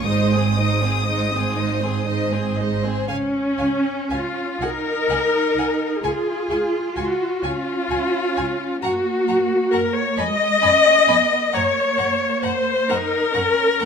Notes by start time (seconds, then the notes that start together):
0.06 G#1 G#2 G#3 D#4 C5 D#5 D#6
0.32 C4 G#4 C5
0.57 G#3 D#4 C5 D#5
0.82 C4 G#4 C5
1.08 G#3 D#4 C5 D#5
1.33 C4 G#4 C5
1.58 G#3 D#4 C5 D#5
1.83 C4 G#4 C5
2.08 G#3 D#4 C5 D#5
2.32 C4 G#4 C5
2.58 G#3 D#4 C5 D#5
2.84 C4 G#4 C5
3.08 C#2 C#4 F5 G#5
3.58 C#2 F5 G#5
4.10 C#2 F4 F5 G#5
4.61 C2 D#4 A#4 F#5 G#5
5.10 C2 F#5 G#5
5.56 C2 F#5 G#5
6.02 C#2 F4 G#4 G#5 C#6
6.50 C#2 G#5 C#6
6.96 C#2 F#4 G#5 C#6
7.43 C#2 C#4 F4 G#5 C#6
7.90 C#2 G#5 C#6
8.36 C#2 G#5 C#6
8.83 F#2 A#3 F#4 F#5 A#5 C#6
9.28 F#2 F#5 A#5 C#6
9.73 F#2 A#4 F#5 A#5 C#6
9.98 C#5
10.17 F2 G#3 D#5 G#5 B5 C#6
10.61 F2 C#4 G#5 B5 C#6
11.07 F2 B3 G#5 B5 C#6
11.53 F#2 A#3 C#5 F#5 A#5 C#6
11.97 F#2 F#5 A#5 C#6
12.42 F#2 C5 F#5 A#5 C#6
12.89 F#2 D#4 A#4 F#5 A#5 C#6
13.33 F#2 C#4 F#5 A#5 C#6
13.79 F#2 A#3 F#5 A#5 C#6